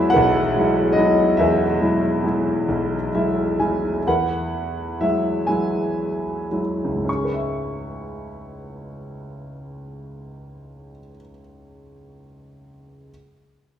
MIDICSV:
0, 0, Header, 1, 2, 480
1, 0, Start_track
1, 0, Key_signature, 4, "minor"
1, 0, Tempo, 833333
1, 795, Time_signature, 6, 3, 24, 8
1, 1287, Tempo, 910470
1, 2247, Tempo, 955414
1, 3207, Tempo, 1109057
1, 3687, Tempo, 1167315
1, 4647, Tempo, 1192843
1, 6411, End_track
2, 0, Start_track
2, 0, Title_t, "Grand piano"
2, 0, Program_c, 0, 0
2, 0, Control_c, 0, 64, 127
2, 0, Note_on_c, 0, 40, 69
2, 0, Note_on_c, 0, 54, 48
2, 0, Note_on_c, 0, 56, 48
2, 0, Note_on_c, 0, 64, 50
2, 0, Note_on_c, 0, 66, 65
2, 0, Note_on_c, 0, 68, 63
2, 0, Note_on_c, 0, 71, 89
2, 0, Note_on_c, 0, 76, 77
2, 57, Note_on_c, 0, 78, 85
2, 60, Note_off_c, 0, 66, 0
2, 60, Note_off_c, 0, 68, 0
2, 78, Note_off_c, 0, 71, 0
2, 78, Note_on_c, 0, 71, 50
2, 93, Note_on_c, 0, 35, 67
2, 229, Note_off_c, 0, 54, 0
2, 230, Note_off_c, 0, 56, 0
2, 230, Note_off_c, 0, 64, 0
2, 324, Note_on_c, 0, 54, 44
2, 326, Note_on_c, 0, 56, 40
2, 330, Note_on_c, 0, 64, 53
2, 520, Note_off_c, 0, 78, 0
2, 533, Note_on_c, 0, 75, 73
2, 546, Note_off_c, 0, 54, 0
2, 550, Note_off_c, 0, 56, 0
2, 552, Note_off_c, 0, 64, 0
2, 554, Note_on_c, 0, 54, 42
2, 558, Note_on_c, 0, 56, 35
2, 561, Note_on_c, 0, 64, 46
2, 769, Note_off_c, 0, 40, 0
2, 769, Note_off_c, 0, 71, 0
2, 790, Note_off_c, 0, 76, 0
2, 790, Note_on_c, 0, 76, 67
2, 791, Note_off_c, 0, 75, 0
2, 800, Note_on_c, 0, 40, 54
2, 805, Note_on_c, 0, 71, 45
2, 809, Note_on_c, 0, 68, 48
2, 941, Note_off_c, 0, 54, 0
2, 943, Note_off_c, 0, 56, 0
2, 945, Note_off_c, 0, 64, 0
2, 1039, Note_on_c, 0, 54, 35
2, 1042, Note_on_c, 0, 56, 37
2, 1046, Note_on_c, 0, 64, 44
2, 1280, Note_off_c, 0, 54, 0
2, 1280, Note_off_c, 0, 56, 0
2, 1284, Note_off_c, 0, 64, 0
2, 1288, Note_on_c, 0, 54, 40
2, 1289, Note_on_c, 0, 56, 35
2, 1293, Note_on_c, 0, 64, 41
2, 1505, Note_off_c, 0, 35, 0
2, 1524, Note_on_c, 0, 35, 53
2, 1667, Note_off_c, 0, 54, 0
2, 1667, Note_off_c, 0, 56, 0
2, 1670, Note_off_c, 0, 64, 0
2, 1738, Note_off_c, 0, 76, 0
2, 1745, Note_off_c, 0, 71, 0
2, 1746, Note_off_c, 0, 68, 0
2, 1765, Note_on_c, 0, 54, 34
2, 1767, Note_on_c, 0, 76, 49
2, 1768, Note_on_c, 0, 56, 32
2, 1768, Note_on_c, 0, 64, 37
2, 1990, Note_off_c, 0, 76, 0
2, 1997, Note_off_c, 0, 54, 0
2, 1997, Note_off_c, 0, 56, 0
2, 2002, Note_off_c, 0, 64, 0
2, 2005, Note_on_c, 0, 54, 32
2, 2005, Note_on_c, 0, 56, 26
2, 2005, Note_on_c, 0, 80, 45
2, 2009, Note_on_c, 0, 64, 36
2, 2200, Note_off_c, 0, 54, 0
2, 2200, Note_off_c, 0, 56, 0
2, 2203, Note_off_c, 0, 64, 0
2, 2228, Note_off_c, 0, 35, 0
2, 2230, Note_off_c, 0, 40, 0
2, 2232, Note_off_c, 0, 80, 0
2, 2252, Note_on_c, 0, 40, 42
2, 2254, Control_c, 0, 64, 0
2, 2257, Note_on_c, 0, 78, 57
2, 2260, Note_on_c, 0, 71, 49
2, 2341, Control_c, 0, 64, 127
2, 2724, Note_on_c, 0, 54, 36
2, 2725, Note_on_c, 0, 76, 54
2, 2726, Note_on_c, 0, 56, 32
2, 2728, Note_on_c, 0, 64, 38
2, 2740, Note_off_c, 0, 78, 0
2, 2945, Note_off_c, 0, 71, 0
2, 2956, Note_on_c, 0, 80, 53
2, 2958, Note_off_c, 0, 54, 0
2, 2958, Note_off_c, 0, 56, 0
2, 2961, Note_off_c, 0, 64, 0
2, 2965, Note_on_c, 0, 54, 36
2, 2966, Note_on_c, 0, 56, 33
2, 2969, Note_off_c, 0, 76, 0
2, 2969, Note_on_c, 0, 64, 39
2, 3428, Note_off_c, 0, 54, 0
2, 3428, Note_off_c, 0, 56, 0
2, 3429, Note_off_c, 0, 64, 0
2, 3443, Note_on_c, 0, 54, 24
2, 3446, Note_on_c, 0, 56, 24
2, 3448, Note_on_c, 0, 64, 27
2, 3480, Note_off_c, 0, 80, 0
2, 3587, Note_on_c, 0, 37, 27
2, 3629, Note_on_c, 0, 44, 26
2, 3671, Note_on_c, 0, 61, 24
2, 3673, Note_off_c, 0, 40, 0
2, 3683, Note_off_c, 0, 54, 0
2, 3685, Note_off_c, 0, 56, 0
2, 3686, Note_off_c, 0, 64, 0
2, 3694, Control_c, 0, 64, 0
2, 3694, Note_on_c, 0, 85, 38
2, 3714, Note_on_c, 0, 68, 25
2, 3755, Note_on_c, 0, 71, 25
2, 3758, Control_c, 0, 64, 127
2, 3796, Note_on_c, 0, 76, 29
2, 5246, Note_off_c, 0, 37, 0
2, 5285, Note_off_c, 0, 44, 0
2, 5324, Note_off_c, 0, 61, 0
2, 5346, Note_off_c, 0, 85, 0
2, 5366, Note_off_c, 0, 68, 0
2, 5406, Note_off_c, 0, 71, 0
2, 5446, Note_off_c, 0, 76, 0
2, 6133, Control_c, 0, 64, 0
2, 6411, End_track
0, 0, End_of_file